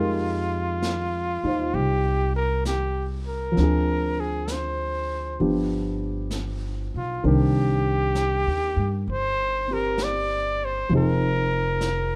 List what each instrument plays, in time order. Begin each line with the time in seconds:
Already playing: upright bass F2, upright piano G#3 D#4 G4 A#4, trumpet F4
0.82 brush sweep, snare, hi-hat pedal
1.43 upright bass D#2, upright piano D#4 F4 C5
1.74 upright bass C2, trumpet G4, brush sweep
2.36 trumpet A#4
2.65 trumpet G4, brush sweep, snare, hi-hat pedal
3.27 trumpet A#4
3.52 upright piano F3
3.56 upright bass D2, upright piano C4 D4, brush sweep, snare
3.63 upright piano G#4
4.20 trumpet G#4
4.48 brush sweep, snare, hi-hat pedal
4.52 trumpet C5
5.39 upright bass G1, upright piano F3 B3 D4 G4, brush sweep
6.31 brush sweep, snare, hi-hat pedal
6.94 upright bass B1, trumpet F4
7.23 upright bass C2, upright piano D#3 C4 D4 A#4, trumpet G4, brush sweep
8.15 brush sweep, snare, hi-hat pedal
8.47 upright bass D#2
8.77 upright bass G2
9.07 upright bass G1, brush sweep
9.11 trumpet C5
9.68 upright piano C4 G4
9.73 trumpet A#4
9.98 brush sweep, snare, hi-hat pedal
10.03 trumpet D5
10.65 trumpet C5
10.89 upright bass F1, upright piano F3 C4 D#4, brush sweep
10.94 upright piano G#4, trumpet A#4
11.81 brush sweep, snare, hi-hat pedal